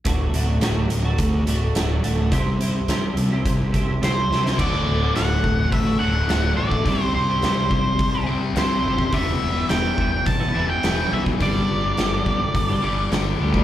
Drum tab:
CC |----------------|----------------|x---------------|----------------|
HH |x-x-x-x-x-x-x-x-|x-x-x-x-x-x-x---|----o---o---o---|o---o---o---o---|
SD |----o-------o---|----o-------o-oo|----o-------o---|----o-------o---|
BD |o-------o-------|o-------o-o-----|o-----o-o------o|o-----o-o------o|

CC |----------------|----------------|
HH |o---o---o---o---|o---o---o---o---|
SD |----o-------o---|----o-------o---|
BD |o-----o-o------o|o-----o-o------o|